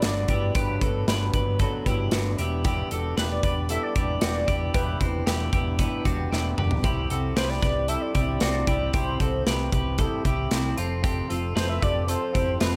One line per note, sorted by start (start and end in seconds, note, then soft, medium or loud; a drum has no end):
0.02 0.24 G1 medium
0.02 0.29 G2 medium
0.02 0.29 D3 medium
0.02 0.29 F#3 medium
0.02 0.29 B3 medium
0.02 0.28 D4 medium
0.02 0.30 D4 medium
0.02 0.29 F#4 medium
0.02 0.28 B4 medium
0.02 0.52 D5 loud
0.02 snare loud
0.02 closed hi-hat loud
0.28 0.50 G1 medium
0.28 0.54 F#3 soft
0.28 0.54 B3 soft
0.28 0.54 D4 soft
0.28 0.56 E4 medium
0.28 0.55 G4 medium
0.28 0.55 B4 medium
0.28 kick medium
0.28 closed hi-hat medium
0.54 0.77 G1 medium
0.54 0.81 G2 medium
0.54 0.81 D3 medium
0.54 0.81 F#3 medium
0.54 0.81 B3 medium
0.54 0.81 D4 medium
0.54 0.82 D4 medium
0.54 0.82 G4 loud
0.54 1.04 B4 medium
0.54 0.80 B4 medium
0.54 kick loud
0.54 closed hi-hat medium
0.81 1.03 G1 loud
0.81 1.07 F#3 soft
0.81 1.07 B3 soft
0.81 1.07 D4 soft
0.81 1.08 F#4 medium
0.81 1.08 A4 medium
0.81 1.07 B4 soft
0.81 kick medium
0.81 closed hi-hat medium
1.07 1.29 G1 medium
1.07 1.34 G2 medium
1.07 1.34 D3 medium
1.07 1.34 F#3 medium
1.07 1.34 B3 medium
1.07 1.34 D4 medium
1.07 1.34 G4 medium
1.07 1.33 B4 medium
1.07 snare loud
1.07 closed hi-hat medium
1.33 1.66 G1 loud
1.33 1.59 F#3 soft
1.33 1.59 B3 medium
1.33 1.60 D4 medium
1.33 1.61 G4 medium
1.33 1.60 B4 medium
1.33 kick medium
1.33 closed hi-hat medium
1.59 1.86 F#3 medium
1.59 1.86 B3 medium
1.59 1.86 D4 medium
1.59 1.87 F#4 medium
1.59 1.87 A4 medium
1.59 1.85 B4 medium
1.59 kick medium
1.59 closed hi-hat medium
1.86 2.08 G1 loud
1.86 2.11 F#3 medium
1.86 2.12 B3 soft
1.86 2.12 D4 medium
1.86 2.13 E4 medium
1.86 2.12 G4 medium
1.86 2.12 B4 medium
1.86 kick medium
1.86 closed hi-hat medium
2.11 2.34 G1 loud
2.11 2.38 G2 medium
2.11 2.38 D3 medium
2.11 2.39 F#3 medium
2.11 2.39 B3 medium
2.11 2.38 D4 medium
2.11 2.39 D4 medium
2.11 2.38 F#4 medium
2.11 2.38 B4 loud
2.11 snare loud
2.11 closed hi-hat loud
2.38 2.82 E1 loud
2.38 2.64 B3 medium
2.38 2.64 D4 medium
2.38 2.65 E4 medium
2.38 2.64 G4 medium
2.38 closed hi-hat medium
2.64 2.91 E3 medium
2.64 2.91 G3 medium
2.64 2.91 B3 loud
2.64 2.90 D4 medium
2.64 2.91 E4 medium
2.64 2.91 G4 loud
2.64 2.89 G4 loud
2.64 kick loud
2.64 closed hi-hat medium
2.90 3.13 E1 loud
2.90 3.16 B3 soft
2.90 3.16 D4 soft
2.90 3.18 F#4 medium
2.90 3.17 G4 medium
2.90 3.17 A4 medium
2.90 closed hi-hat medium
3.16 3.39 E1 loud
3.16 3.43 E3 medium
3.16 3.43 G3 medium
3.16 3.43 B3 medium
3.16 3.42 D4 medium
3.16 3.41 G4 medium
3.16 3.43 G4 medium
3.16 3.43 B4 medium
3.16 3.24 B4 medium
3.16 snare loud
3.16 closed hi-hat medium
3.32 3.68 D5 loud
3.42 3.76 E1 loud
3.42 3.69 B3 soft
3.42 3.69 D4 soft
3.42 3.69 G4 medium
3.42 3.70 G4 medium
3.42 3.69 B4 medium
3.42 kick loud
3.42 closed hi-hat medium
3.69 3.96 G3 medium
3.69 3.96 B3 medium
3.69 3.95 D4 medium
3.69 3.95 E4 medium
3.69 3.94 G4 medium
3.69 3.96 A4 medium
3.69 3.84 E5 loud
3.69 closed hi-hat medium
3.83 4.21 D5 loud
3.96 4.17 E1 loud
3.96 4.22 B3 soft
3.96 4.22 D4 medium
3.96 4.22 E4 medium
3.96 4.22 G4 medium
3.96 4.21 G4 medium
3.96 kick medium
3.96 closed hi-hat medium
4.21 4.44 E1 loud
4.21 4.48 E3 medium
4.21 4.49 G3 medium
4.21 4.49 B3 medium
4.21 4.49 D4 medium
4.21 4.48 D4 medium
4.21 4.47 F#4 medium
4.21 4.47 G4 loud
4.21 4.71 D5 loud
4.21 snare loud
4.21 closed hi-hat loud
4.48 4.70 E1 loud
4.48 4.74 B3 soft
4.48 4.74 D4 soft
4.48 4.74 E4 medium
4.48 4.73 G4 medium
4.48 4.74 G4 medium
4.48 kick loud
4.48 closed hi-hat medium
4.74 4.96 E1 medium
4.74 5.01 E3 medium
4.74 5.01 G3 medium
4.74 5.01 B3 medium
4.74 5.00 D4 medium
4.74 4.99 E4 medium
4.74 5.00 G4 loud
4.74 4.99 G4 medium
4.74 5.23 B4 medium
4.74 kick loud
4.74 closed hi-hat medium
5.00 5.22 E1 loud
5.00 5.26 B3 soft
5.00 5.27 C4 medium
5.00 5.27 D4 soft
5.00 5.26 E4 medium
5.00 5.27 G4 soft
5.00 kick medium
5.00 closed hi-hat medium
5.27 5.48 E1 medium
5.27 5.53 E3 medium
5.27 5.53 G3 medium
5.27 5.53 B3 medium
5.27 5.52 D4 medium
5.27 5.53 E4 medium
5.27 5.52 G4 medium
5.27 5.51 G4 medium
5.27 snare loud
5.27 closed hi-hat medium
5.52 5.85 E1 loud
5.52 5.79 B3 soft
5.52 5.79 D4 medium
5.52 5.78 E4 medium
5.52 5.79 G4 medium
5.52 kick loud
5.52 closed hi-hat medium
5.79 6.05 G3 medium
5.79 6.06 B3 medium
5.79 6.05 B3 medium
5.79 6.05 D4 medium
5.79 6.05 E4 medium
5.79 6.04 G4 medium
5.79 kick medium
5.79 closed hi-hat medium
6.05 6.27 E1 loud
6.05 6.32 B3 medium
6.05 6.32 D4 medium
6.05 6.31 F#4 medium
6.05 6.32 G4 medium
6.05 kick medium
6.05 closed hi-hat medium
6.32 6.53 E1 loud
6.32 6.58 E3 medium
6.32 6.58 G3 medium
6.32 6.58 B3 medium
6.32 6.58 D4 loud
6.32 6.58 E4 medium
6.32 6.58 G4 medium
6.32 6.57 G4 loud
6.32 snare medium
6.58 6.80 E1 loud
6.58 6.84 B3 soft
6.58 6.84 D4 medium
6.58 6.84 G4 medium
6.58 6.83 G4 medium
6.58 6.84 B4 medium
6.58 mid tom medium
6.71 floor tom medium
6.83 7.05 C2 medium
6.83 7.10 C3 medium
6.83 7.10 G3 medium
6.83 7.10 C4 medium
6.83 7.10 E4 medium
6.83 7.10 G4 loud
6.83 7.09 G4 medium
6.83 kick loud
6.83 closed hi-hat medium
7.10 7.32 C2 loud
7.10 7.36 C4 medium
7.10 7.36 E4 medium
7.10 7.37 F#4 medium
7.10 7.36 G4 soft
7.10 7.36 A4 medium
7.10 closed hi-hat medium
7.36 7.58 C2 medium
7.36 7.63 C3 medium
7.36 7.63 G3 medium
7.36 7.63 C4 medium
7.36 7.62 E4 medium
7.36 7.62 G4 medium
7.36 7.61 B4 medium
7.36 7.51 C5 medium
7.36 snare loud
7.36 closed hi-hat medium
7.49 7.90 D5 loud
7.62 7.95 C2 loud
7.62 7.88 C4 soft
7.62 7.89 E4 soft
7.62 7.89 G4 medium
7.62 7.88 B4 medium
7.62 kick loud
7.62 snare soft
7.62 closed hi-hat medium
7.88 8.15 G3 medium
7.88 8.15 C4 medium
7.88 8.14 E4 medium
7.88 8.15 E4 medium
7.88 8.14 G4 medium
7.88 8.15 A4 medium
7.88 8.03 E5 loud
7.88 closed hi-hat medium
8.02 8.41 D5 loud
8.15 8.37 C2 medium
8.15 8.41 C4 soft
8.15 8.41 E4 medium
8.15 8.42 E4 medium
8.15 8.41 G4 medium
8.15 8.41 G4 soft
8.15 kick medium
8.15 closed hi-hat medium
8.40 8.63 C2 medium
8.40 8.68 C3 medium
8.40 8.68 G3 medium
8.40 8.68 C4 medium
8.40 8.68 E4 medium
8.40 8.67 F#4 medium
8.40 8.67 G4 medium
8.40 8.90 D5 medium
8.40 snare loud
8.40 closed hi-hat loud
8.67 8.89 C2 loud
8.67 8.94 C4 soft
8.67 8.94 E4 medium
8.67 8.94 E4 soft
8.67 8.93 G4 medium
8.67 8.94 G4 soft
8.67 kick loud
8.67 closed hi-hat medium
8.93 9.15 C2 medium
8.93 9.20 C3 medium
8.93 9.20 G3 medium
8.93 9.20 C4 medium
8.93 9.20 E4 medium
8.93 9.20 G4 loud
8.93 9.19 G4 medium
8.93 9.43 C5 medium
8.93 kick loud
8.93 closed hi-hat medium
9.20 9.42 C2 loud
9.20 9.46 C4 soft
9.20 9.46 E4 medium
9.20 9.47 F#4 medium
9.20 9.46 G4 medium
9.20 9.46 A4 medium
9.20 kick medium
9.20 closed hi-hat medium
9.46 9.68 C2 medium
9.46 9.73 C3 medium
9.46 9.73 G3 medium
9.46 9.73 C4 medium
9.46 9.72 E4 medium
9.46 9.72 G4 medium
9.46 9.71 G4 medium
9.46 9.71 B4 medium
9.46 snare loud
9.46 closed hi-hat medium
9.72 10.05 C2 loud
9.72 9.98 C4 soft
9.72 9.99 E4 medium
9.72 9.99 G4 medium
9.72 9.99 B4 medium
9.72 kick medium
9.72 closed hi-hat medium
9.98 10.25 G3 medium
9.98 10.25 C4 medium
9.98 10.25 E4 medium
9.98 10.24 E4 medium
9.98 10.24 G4 medium
9.98 10.25 A4 medium
9.98 kick medium
9.98 closed hi-hat medium
10.25 10.47 C2 medium
10.25 10.51 C4 soft
10.25 10.50 E4 medium
10.25 10.51 E4 medium
10.25 10.51 G4 medium
10.25 kick medium
10.25 closed hi-hat medium
10.51 10.73 C2 loud
10.51 10.77 C3 medium
10.51 10.78 G3 medium
10.51 10.78 C4 medium
10.51 10.77 C4 soft
10.51 10.77 E4 medium
10.51 10.76 G4 loud
10.51 snare loud
10.51 closed hi-hat loud
10.76 11.21 F1 loud
10.76 11.03 C4 medium
10.76 11.02 C4 medium
10.76 11.03 F4 medium
10.76 11.02 F4 medium
10.76 11.03 A4 medium
10.76 closed hi-hat medium
11.03 11.29 F3 medium
11.03 11.30 C4 medium
11.03 11.29 F4 medium
11.03 11.30 G4 loud
11.03 11.28 A4 medium
11.03 kick loud
11.03 closed hi-hat medium
11.29 11.52 F1 loud
11.29 11.54 C4 soft
11.29 11.55 F4 medium
11.29 11.55 A4 medium
11.29 closed hi-hat medium
11.55 11.78 F1 loud
11.55 11.82 F3 medium
11.55 11.82 C4 medium
11.55 11.81 F4 medium
11.55 11.83 F4 medium
11.55 11.80 A4 medium
11.55 11.82 B4 medium
11.55 11.69 C5 loud
11.55 snare loud
11.55 closed hi-hat medium
11.69 11.84 E5 loud
11.81 12.15 F1 loud
11.81 12.06 C4 soft
11.81 12.07 F4 soft
11.81 12.09 G4 medium
11.81 12.08 A4 medium
11.81 12.08 B4 medium
11.81 12.10 D5 loud
11.81 kick loud
11.81 closed hi-hat medium
12.07 12.34 F3 medium
12.07 12.34 C4 medium
12.07 12.33 F4 medium
12.07 12.34 F4 medium
12.07 12.35 A4 medium
12.07 12.32 A4 medium
12.07 12.63 C5 loud
12.07 closed hi-hat medium
12.33 12.56 F1 medium
12.33 12.59 C4 soft
12.33 12.61 E4 medium
12.33 12.60 F4 soft
12.33 12.60 G4 medium
12.33 12.60 A4 medium
12.33 kick medium
12.33 closed hi-hat medium
12.60 12.76 F1 loud
12.60 12.76 F3 medium
12.60 12.76 C4 medium
12.60 12.76 F4 medium
12.60 12.76 A4 medium
12.60 12.76 B4 medium
12.60 snare loud
12.60 closed hi-hat loud